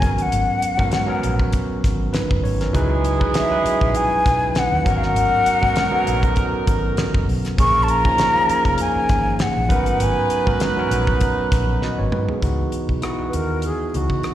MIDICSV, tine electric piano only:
0, 0, Header, 1, 2, 480
1, 0, Start_track
1, 0, Key_signature, 5, "minor"
1, 0, Tempo, 604839
1, 257, Time_signature, 4, 2, 24, 8
1, 11380, End_track
2, 0, Start_track
2, 0, Title_t, "Tine electric piano"
2, 0, Program_c, 0, 4
2, 0, Control_c, 0, 64, 127
2, 2, Note_on_c, 0, 54, 82
2, 9, Note_on_c, 0, 59, 66
2, 14, Note_on_c, 0, 61, 70
2, 23, Note_on_c, 0, 70, 76
2, 28, Control_c, 0, 64, 0
2, 188, Control_c, 0, 64, 127
2, 489, Note_off_c, 0, 54, 0
2, 493, Note_off_c, 0, 59, 0
2, 496, Note_off_c, 0, 61, 0
2, 500, Note_off_c, 0, 70, 0
2, 614, Note_on_c, 0, 54, 69
2, 620, Note_on_c, 0, 59, 57
2, 624, Note_on_c, 0, 61, 63
2, 630, Note_on_c, 0, 70, 70
2, 801, Note_off_c, 0, 54, 0
2, 804, Note_off_c, 0, 59, 0
2, 806, Note_off_c, 0, 61, 0
2, 809, Note_off_c, 0, 70, 0
2, 845, Note_on_c, 0, 54, 82
2, 855, Note_on_c, 0, 59, 73
2, 858, Note_on_c, 0, 61, 69
2, 869, Note_on_c, 0, 70, 91
2, 1596, Note_off_c, 0, 54, 0
2, 1601, Note_off_c, 0, 59, 0
2, 1602, Note_off_c, 0, 61, 0
2, 1608, Note_off_c, 0, 70, 0
2, 1689, Note_on_c, 0, 71, 70
2, 1692, Note_on_c, 0, 63, 58
2, 1921, Note_off_c, 0, 71, 0
2, 1923, Note_off_c, 0, 63, 0
2, 1933, Note_on_c, 0, 73, 67
2, 2059, Note_off_c, 0, 73, 0
2, 2070, Note_on_c, 0, 70, 62
2, 2074, Note_on_c, 0, 61, 50
2, 2168, Note_on_c, 0, 54, 81
2, 2173, Note_on_c, 0, 63, 74
2, 2178, Note_on_c, 0, 64, 72
2, 2185, Note_on_c, 0, 71, 85
2, 2187, Control_c, 0, 64, 0
2, 2297, Note_off_c, 0, 70, 0
2, 2299, Note_off_c, 0, 61, 0
2, 2327, Control_c, 0, 64, 127
2, 2454, Note_off_c, 0, 54, 0
2, 2457, Note_off_c, 0, 63, 0
2, 2459, Note_off_c, 0, 64, 0
2, 2462, Note_off_c, 0, 71, 0
2, 2533, Note_on_c, 0, 54, 65
2, 2540, Note_on_c, 0, 63, 63
2, 2542, Note_on_c, 0, 64, 65
2, 2549, Note_on_c, 0, 71, 76
2, 2721, Note_off_c, 0, 54, 0
2, 2725, Note_off_c, 0, 63, 0
2, 2726, Note_off_c, 0, 64, 0
2, 2730, Note_off_c, 0, 71, 0
2, 2774, Note_on_c, 0, 54, 72
2, 2780, Note_on_c, 0, 61, 64
2, 2785, Note_on_c, 0, 64, 61
2, 2791, Note_on_c, 0, 71, 81
2, 3521, Note_off_c, 0, 54, 0
2, 3524, Note_off_c, 0, 61, 0
2, 3526, Note_off_c, 0, 64, 0
2, 3529, Note_off_c, 0, 71, 0
2, 3844, Note_on_c, 0, 54, 75
2, 3850, Note_on_c, 0, 59, 64
2, 3859, Note_on_c, 0, 61, 73
2, 3865, Note_on_c, 0, 70, 88
2, 3869, Control_c, 0, 64, 0
2, 3989, Control_c, 0, 64, 127
2, 4331, Note_off_c, 0, 54, 0
2, 4335, Note_off_c, 0, 59, 0
2, 4339, Note_off_c, 0, 61, 0
2, 4342, Note_off_c, 0, 70, 0
2, 4455, Note_on_c, 0, 54, 68
2, 4464, Note_on_c, 0, 59, 61
2, 4468, Note_on_c, 0, 61, 70
2, 4476, Note_on_c, 0, 70, 69
2, 4643, Note_off_c, 0, 54, 0
2, 4647, Note_off_c, 0, 59, 0
2, 4649, Note_off_c, 0, 61, 0
2, 4653, Note_off_c, 0, 70, 0
2, 4690, Note_on_c, 0, 54, 79
2, 4696, Note_on_c, 0, 59, 78
2, 4705, Note_on_c, 0, 61, 75
2, 4709, Note_on_c, 0, 69, 72
2, 4756, Note_off_c, 0, 69, 0
2, 4763, Note_on_c, 0, 70, 99
2, 5439, Note_off_c, 0, 54, 0
2, 5442, Note_off_c, 0, 59, 0
2, 5446, Note_off_c, 0, 61, 0
2, 5475, Note_off_c, 0, 70, 0
2, 6009, Note_on_c, 0, 53, 61
2, 6013, Note_on_c, 0, 58, 58
2, 6021, Note_on_c, 0, 61, 63
2, 6028, Note_on_c, 0, 68, 78
2, 6029, Control_c, 0, 64, 0
2, 6145, Control_c, 0, 64, 127
2, 6295, Note_off_c, 0, 53, 0
2, 6297, Note_off_c, 0, 58, 0
2, 6301, Note_off_c, 0, 61, 0
2, 6305, Note_off_c, 0, 68, 0
2, 6379, Note_on_c, 0, 53, 69
2, 6384, Note_on_c, 0, 58, 67
2, 6391, Note_on_c, 0, 61, 65
2, 6397, Note_on_c, 0, 63, 74
2, 6565, Note_off_c, 0, 53, 0
2, 6567, Note_off_c, 0, 58, 0
2, 6571, Note_off_c, 0, 61, 0
2, 6574, Note_off_c, 0, 63, 0
2, 6618, Note_on_c, 0, 53, 65
2, 6620, Note_on_c, 0, 58, 66
2, 6631, Note_on_c, 0, 61, 67
2, 6637, Note_on_c, 0, 68, 76
2, 7363, Note_off_c, 0, 53, 0
2, 7364, Note_off_c, 0, 58, 0
2, 7369, Note_off_c, 0, 61, 0
2, 7372, Note_off_c, 0, 68, 0
2, 7686, Note_on_c, 0, 54, 77
2, 7696, Note_on_c, 0, 59, 72
2, 7700, Note_on_c, 0, 61, 69
2, 7707, Note_on_c, 0, 70, 84
2, 7711, Control_c, 0, 64, 0
2, 7838, Control_c, 0, 64, 127
2, 8173, Note_off_c, 0, 54, 0
2, 8178, Note_off_c, 0, 59, 0
2, 8180, Note_off_c, 0, 61, 0
2, 8183, Note_off_c, 0, 70, 0
2, 8298, Note_on_c, 0, 54, 72
2, 8304, Note_on_c, 0, 59, 61
2, 8312, Note_on_c, 0, 61, 64
2, 8319, Note_on_c, 0, 70, 70
2, 8484, Note_off_c, 0, 54, 0
2, 8488, Note_off_c, 0, 59, 0
2, 8491, Note_off_c, 0, 61, 0
2, 8495, Note_off_c, 0, 70, 0
2, 8543, Note_on_c, 0, 54, 81
2, 8550, Note_on_c, 0, 59, 77
2, 8559, Note_on_c, 0, 61, 76
2, 8563, Note_on_c, 0, 70, 88
2, 9285, Note_off_c, 0, 54, 0
2, 9289, Note_off_c, 0, 59, 0
2, 9294, Note_off_c, 0, 61, 0
2, 9296, Note_off_c, 0, 70, 0
2, 9389, Note_on_c, 0, 75, 61
2, 9392, Note_on_c, 0, 66, 56
2, 9508, Note_off_c, 0, 75, 0
2, 9510, Note_off_c, 0, 66, 0
2, 9512, Note_on_c, 0, 73, 68
2, 9616, Note_off_c, 0, 73, 0
2, 9628, Note_on_c, 0, 71, 66
2, 9631, Note_on_c, 0, 63, 57
2, 9748, Note_off_c, 0, 71, 0
2, 9749, Note_off_c, 0, 63, 0
2, 9758, Note_on_c, 0, 68, 63
2, 9762, Note_on_c, 0, 59, 50
2, 9852, Note_off_c, 0, 59, 0
2, 9856, Note_on_c, 0, 52, 70
2, 9861, Note_on_c, 0, 59, 60
2, 9869, Note_on_c, 0, 63, 62
2, 9871, Control_c, 0, 64, 0
2, 9877, Note_on_c, 0, 66, 72
2, 9982, Note_off_c, 0, 68, 0
2, 10001, Control_c, 0, 64, 127
2, 10238, Note_off_c, 0, 52, 0
2, 10240, Note_off_c, 0, 59, 0
2, 10244, Note_off_c, 0, 63, 0
2, 10248, Note_off_c, 0, 66, 0
2, 10332, Note_on_c, 0, 64, 71
2, 10338, Note_on_c, 0, 59, 59
2, 10346, Note_on_c, 0, 63, 62
2, 10350, Note_on_c, 0, 66, 81
2, 10899, Note_off_c, 0, 64, 0
2, 10902, Note_off_c, 0, 59, 0
2, 10906, Note_off_c, 0, 63, 0
2, 10908, Note_off_c, 0, 66, 0
2, 11056, Note_on_c, 0, 52, 55
2, 11063, Note_on_c, 0, 59, 58
2, 11069, Note_on_c, 0, 63, 52
2, 11079, Note_on_c, 0, 66, 65
2, 11380, Note_off_c, 0, 52, 0
2, 11380, Note_off_c, 0, 59, 0
2, 11380, Note_off_c, 0, 63, 0
2, 11380, Note_off_c, 0, 66, 0
2, 11380, End_track
0, 0, End_of_file